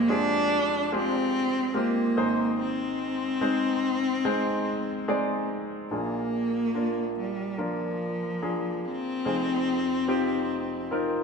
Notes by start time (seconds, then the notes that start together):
Already playing: F1 F2 G#3 A#3 C4 F4 G4 G#4
0.09 G#3 C4 D4 F4 G4 G#4
0.92 G#3 C4 F4 G4 G#4
1.74 G#3 A#3 C4 F4 G4 A#4
2.17 G#1 G#2 G#3 C4 D#4 G#4 C5
2.59 C4
3.41 G#3 C4 D#4 G#4 C5
4.25 G#3 C4 D#4 G#4 C5
5.08 G#3 C4 D#4 G#4 D5
5.91 A#1 A#2 A#3 D4 F4 G#4
6.75 A#3 D4 F4 A#4
7.19 G3
7.58 F3 A#3 D4 F4 A#4
8.42 A#3 D4 F4 G#4
8.85 C4
9.25 F1 F2 C4 D#4 F4 G#4
10.08 C4 D#4 F4 G4
10.91 C4 D#4 F4 A#4